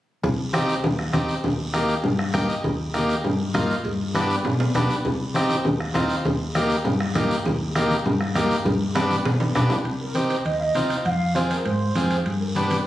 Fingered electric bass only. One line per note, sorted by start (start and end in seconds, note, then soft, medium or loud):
0.24 0.72 C2 loud
0.84 1.08 D#2 loud
1.14 1.26 D#2 medium
1.44 1.92 D#2 loud
2.04 2.28 G2 loud
2.34 2.46 G2 medium
2.64 3.13 D#2 loud
3.25 3.49 G2 loud
3.55 3.67 G2 medium
3.85 4.33 G2 loud
4.46 4.70 B2 loud
4.75 4.87 B2 medium
5.06 5.54 C2 loud
5.66 5.90 D#2 loud
5.95 6.07 D#2 medium
6.25 6.73 D#2 loud
6.86 7.10 G2 loud
7.16 7.28 G2 loud
7.46 7.94 D#2 loud
8.05 8.30 G2 loud
8.36 8.48 G2 medium
8.66 9.14 G2 loud
9.25 9.49 B2 loud
9.56 9.68 B2 medium
9.85 10.33 C2 loud
10.45 10.69 D#2 loud
10.76 11.00 C2 medium
11.05 11.54 F2 loud
11.66 11.90 G#2 loud
11.96 12.20 F2 medium
12.26 12.74 G2 loud